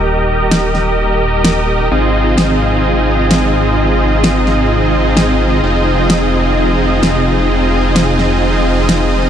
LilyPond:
<<
  \new Staff \with { instrumentName = "Supersaw synth" } { \time 4/4 \key aes \lydian \tempo 4 = 129 <g' bes' ees''>1 | <c' ees' f' aes' ees''>1~ | <c' ees' f' aes' ees''>1 | <c' ees' f' aes' ees''>1~ |
<c' ees' f' aes' ees''>1 | }
  \new Staff \with { instrumentName = "Detuned saw bass" } { \clef bass \time 4/4 \key aes \lydian ees,,1 | aes,,1~ | aes,,1 | f,,1~ |
f,,1 | }
  \new DrumStaff \with { instrumentName = "Drums" } \drummode { \time 4/4 r4 sn8 sn8 r4 sn4 | r4 sn4 r4 sn4 | r4 sn8 sn8 r4 sn4 | r4 sn4 r4 sn4 |
r4 sn8 sn8 r4 sn4 | }
>>